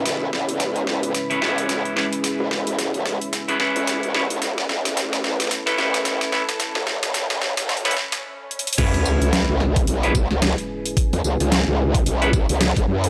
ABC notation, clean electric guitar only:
X:1
M:4/4
L:1/16
Q:"Swing 16ths" 1/4=110
K:C#m
V:1 name="Clean electric guitar"
z8 z [CEGB] [CEGB]4 [CEGB] z | z8 z [CEGB] [CEGB]4 [CEGB] z | z8 z [CEAB] [CEAB]4 [CEAB] z | z8 z [CEAB] z6 |
[CEGB]6 z3 [CEGB] z6 | z8 z [CEGB] z6 |]